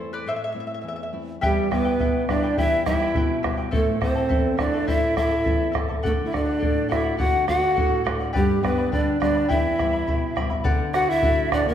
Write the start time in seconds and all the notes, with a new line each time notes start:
Already playing: E2 A3
0.00 C4 E4
0.13 B4 D5
0.26 A2 C5 E5
0.36 E5
0.44 E5
0.52 A3 C4 E4 E5
0.60 E5
0.67 E5
0.74 E5
0.81 E2 E5
0.88 E5
0.96 E5
1.03 E5
1.12 A3 C4 E4
1.41 E2 G3 E4 G4 B4 E5 G5, bombo low
1.71 G3 B3 E4 B4 E5 G5, bombo rim, bombo low
1.85 E4 B4 G5
1.99 B2 E4 B4 E5 G5, bombo low
2.28 G3 B3 D4 E4 B4 D5 E5 G5, bombo rim, bombo low
2.43 E4 B4 G5
2.58 E2 E4 G4 B4 E5 G5, bombo low
2.86 G3 B3 E4 B4 E5 G5, bombo rim, bombo low
3.00 E4 B4 G5
3.15 B2 E4 B4 E5 G5, bombo low
3.43 G3 B3 E4 B4 E5 G5, bombo rim, bombo low
3.57 E4 B4 G5
3.71 A2 A3 E4 A4 C5 E5 A5, bombo low
4.01 A3 C4 E4 A4 C5 E5 A5, bombo rim, bombo low
4.15 E4 A4 A5
4.29 E2 E4 A4 E5 A5, bombo low
4.57 A3 C4 D4 E4 A4 D5 E5 A5, bombo rim, bombo low
4.73 E4 A4 A5
4.87 A2 E4 A4 C5 E5 A5, bombo low
5.16 A3 C4 E4 A4 E5 A5, bombo rim, bombo low
5.29 E4 A4 A5
5.44 E2 E4 A4 E5 A5, bombo low
5.72 A3 C4 E4 A4 E5 A5, bombo rim, bombo low
5.76 E4
5.88 E4 A4 A5, bombo low
6.03 D3 A3 A4 D5 F#5, bombo low
6.25 E4 E5
6.31 A3 D4 F#4 A4 D5 F#5, bombo rim, bombo low
6.46 D5 F#5
6.59 A2 A4 D5 F#5, bombo low
6.88 A3 D4 E4 F#4 A4 D5 E5 F#5, bombo rim, bombo low
7.04 D5 F#5
7.17 D3 F#4 A4 D5 F#5, bombo low
7.47 A3 D4 F#4 A4 D5 F#5, bombo rim, bombo low
7.61 D5 F#5
7.75 A2 A4 D5 F#5, bombo low
8.04 A3 D4 F#4 A4 D5 F#5, bombo rim, bombo low
8.20 D5 F#5
8.33 G2 G3 G4 B4 D5 G5 B5, bombo low
8.63 G3 B3 D4 B4 D5 G5 B5, bombo rim, bombo low
8.78 B4 D5 B5
8.92 D3 D4 B4 D5 G5 B5, bombo low
9.20 G3 B3 D4 B4 D5 G5 B5, bombo rim, bombo low
9.34 B4 D5 B5
9.48 E2 E4 G4 E5 G5 B5, bombo low
9.77 G3 B3 E4 E5 G5 B5, bombo rim, bombo low
9.93 E4 E5 B5
10.07 B2 E4 E5 G5 B5, bombo low
10.36 G3 B3 E4 E5 G5 B5, bombo rim, bombo low
10.50 E4 E5 B5, bombo low
10.64 D3 A4 D5 F#5, bombo low
10.93 F#4 A4 D5 F#5, bombo rim
11.08 E4 D5 E5 F#5
11.22 A3 D4 F#4 A4 D5 F#5, bombo low
11.52 D4 A4 D5 F#5, bombo rim, bombo low
11.66 B3 B4 D5 F#5, bombo low